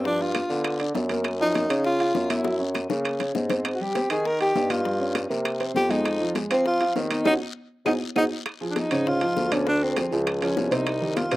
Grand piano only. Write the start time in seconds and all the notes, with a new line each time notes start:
0.05 F3 F4
0.19 D4 D5
0.50 B3 B4
0.81 D4 D5
1.10 A#3 A#4
1.40 F3 F4
1.55 A#3 A#4
1.70 C#4 C#5
2.00 F4 F5
2.15 C#4 C#5
2.45 F#3 F#4
2.59 C#4 C#5
2.90 A#3 A#4
3.20 C#4 C#5
3.50 C4 C5
3.80 G3 G4
3.96 C4 C5
4.11 D#4 D#5
4.40 G4 G5
4.56 D#4 D#5
4.85 G3 G4
5.00 C#4 C#5
5.30 A#3 A#4
5.60 C4 C5
5.90 G#3 G#4
6.20 F3 F4
6.36 G#3 G#4
6.51 C4 C5
6.81 F4 F5
6.96 C4 C5
7.26 C#4 D#4 F#4
7.86 D#4 F#4 G#4
8.16 D#4 F#4 G#4
8.61 F3 F4 G#4
8.92 C#3 C#4 C#5
9.07 C#3 C#4 C#5
9.21 F3 F4 G#4
9.52 D3 D4 D5
9.67 D3 D4 D5
9.96 F3 F4 G#4
10.12 F3 F4 G#4
10.42 F3 F4 G#4
10.71 C3 C4 C5
11.01 D#3 D#4 G4
11.31 C3 C4 C5